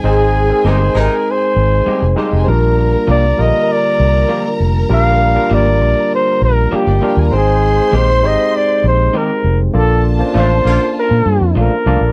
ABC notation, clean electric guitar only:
X:1
M:4/4
L:1/16
Q:1/4=99
K:Bbmix
V:1 name="Clean electric guitar"
z4 [G,CEG] z6 z [G,CEG] z [G,CEG]2 | z4 [F,B,DG] z6 z [F,B,DG] z3 | z4 [F,B,DG] z6 z [F,B,DG] z [F,B,DG]2 | z4 [E,A,CG] z6 z [E,A,CG] z3 |
z4 [F,=A,DF] z6 z [F,A,DF] z [F,A,DF]2 |]